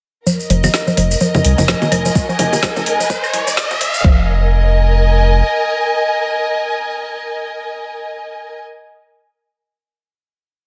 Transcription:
0.26 synth arpeggio sound F3, string section A#4, riser, maracas
0.40 string section D#5, maracas
0.50 sub bass F1, synth arpeggio sound F3, open hi-hat
0.64 synth arpeggio sound F3, low bongo, claves, maracas
0.74 snare, maracas
0.87 synth arpeggio sound F3, maracas
0.97 sub bass F1, synth arpeggio sound F3, open hi-hat
1.11 maracas
1.20 synth arpeggio sound F3, maracas
1.34 synth arpeggio sound F3, low conga, maracas
1.44 sub bass C2, string section G#5, open hi-hat
1.58 sub bass F1, synth arpeggio sound F3, low conga, maracas
1.68 synth arpeggio sound F3, snare, maracas
1.82 low bongo, maracas
1.92 sub bass F1, synth arpeggio sound F3, open hi-hat, claves
2.05 synth arpeggio sound F3, maracas
2.15 kick, maracas
2.29 synth arpeggio sound F3, maracas
2.39 sub bass F1, synth arpeggio sound F3, open hi-hat, low conga
2.53 low bongo, maracas
2.63 synth arpeggio sound F3, kick, snare, maracas
2.76 synth arpeggio sound F3, low conga, maracas
2.86 sub bass F1, open hi-hat
3.00 synth arpeggio sound F3, maracas
3.10 synth arpeggio sound F3, kick, maracas
3.24 claves, maracas
3.33 sub bass C2, synth arpeggio sound F3, open hi-hat
3.47 sub bass F1, synth arpeggio sound F3, maracas
3.57 kick, snare, maracas
3.71 synth arpeggio sound F3, low bongo, maracas
3.81 sub bass F1, synth arpeggio sound F3, open hi-hat
3.94 maracas
4.04 sub bass F1, synth arpeggio sound F3, string section A#4, kick
4.13 string section D#5
4.20 string section G#5

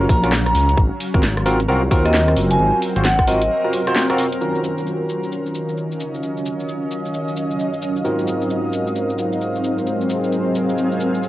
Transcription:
Already playing: ambient pad F#3 C#4 F5
0.01 tine electric piano C#4 F4 F#4 A#4
0.09 detuned saw bass A#1, vibraphone A#5, kick, open hi-hat
0.23 tine electric piano C#4 F4 F#4 A#4, cross-stick, closed hi-hat
0.32 snare
0.46 vibraphone A#5, cross-stick, closed hi-hat
0.55 detuned saw bass C#2, open hi-hat
0.69 closed hi-hat
0.77 detuned saw bass G#1, ambient pad C4, kick
1.00 open hi-hat
1.14 detuned saw bass G#1, tine electric piano C4 F4 F#4 A#4, kick, closed hi-hat
1.23 snare
1.37 cross-stick, closed hi-hat
1.46 tine electric piano C4 F4 F#4 A#4, open hi-hat
1.60 closed hi-hat
1.68 detuned saw bass C2, tine electric piano C4 F4 F#4 A#4
1.83 ambient pad A#4
1.91 detuned saw bass D#2, tine electric piano C4 F4 F#4 A#4, kick, open hi-hat
2.05 vibraphone D#5, cross-stick, closed hi-hat
2.14 vibraphone D#5, snare
2.28 cross-stick, closed hi-hat
2.37 detuned saw bass F#1, open hi-hat
2.51 vibraphone G#5, closed hi-hat
2.59 detuned saw bass G#1, vibraphone G#5
2.82 open hi-hat
2.96 detuned saw bass G#1, tine electric piano C4 F4 F#4 C5, closed hi-hat
3.05 vibraphone F#5, snare
3.19 kick, cross-stick, closed hi-hat
3.27 tine electric piano C4 F4 F#4 A#4, vibraphone D#5, open hi-hat
3.42 closed hi-hat
3.64 tine electric piano C4 F4 F#4 A#4
3.73 open hi-hat
3.87 tine electric piano C4 F4 F#4 C5, cross-stick, closed hi-hat
3.96 snare
4.10 tine electric piano C4 F4 F#4 A#4, cross-stick, closed hi-hat
4.18 open hi-hat
4.32 closed hi-hat
4.41 analog synth pad D#3 F#3 C#4 A#4 F5, tine electric piano D#3 C#4 F4 F#4 A#4, ambient pad C#4, cabasa
4.55 cabasa
4.64 ambient pad F#3, cabasa
4.78 cabasa
4.87 cabasa
5.00 ambient pad F5
5.04 ambient pad D#5
5.09 cabasa
5.23 cabasa
5.32 cabasa
5.46 cabasa
5.55 cabasa
5.69 cabasa
5.78 cabasa
5.92 cabasa
6.00 cabasa
6.14 cabasa
6.23 cabasa
6.37 cabasa
6.46 cabasa
6.60 cabasa
6.69 cabasa
6.91 cabasa
7.05 cabasa
7.14 cabasa
7.28 cabasa
7.37 cabasa
7.51 cabasa
7.60 cabasa
7.74 cabasa
7.82 cabasa
7.96 cabasa
8.05 tine electric piano G#2 C4 D#4 F4 F#4 A#4, analog synth pad G#3 D#4 C5 F5, ambient pad C4, cabasa
8.19 cabasa
8.28 cabasa
8.42 cabasa
8.50 cabasa
8.73 cabasa
8.87 cabasa
8.94 ambient pad G#4, cabasa
9.10 cabasa
9.18 cabasa
9.33 ambient pad A#4, cabasa
9.41 cabasa
9.55 cabasa
9.64 cabasa
9.78 cabasa
9.87 analog synth pad D#5, cabasa
10.01 cabasa
10.10 cabasa
10.24 cabasa
10.32 cabasa
10.55 cabasa
10.69 cabasa
10.78 cabasa
10.92 cabasa
11.00 cabasa
11.14 cabasa
11.23 cabasa

